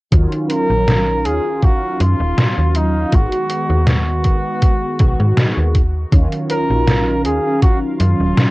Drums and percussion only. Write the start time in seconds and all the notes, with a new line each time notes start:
0.12 kick, closed hi-hat
0.32 closed hi-hat
0.50 closed hi-hat
0.88 snare, closed hi-hat
1.25 closed hi-hat
1.62 kick, closed hi-hat
2.00 closed hi-hat
2.38 snare, closed hi-hat
2.75 closed hi-hat
3.12 kick, closed hi-hat
3.32 closed hi-hat
3.50 closed hi-hat
3.87 snare, closed hi-hat
4.24 kick, closed hi-hat
4.62 kick, closed hi-hat
4.99 kick, closed hi-hat
5.37 snare, closed hi-hat
5.75 kick, closed hi-hat
6.12 kick, closed hi-hat
6.32 closed hi-hat
6.50 closed hi-hat
6.87 snare, closed hi-hat
7.25 closed hi-hat
7.62 kick, closed hi-hat
8.00 closed hi-hat
8.37 snare, closed hi-hat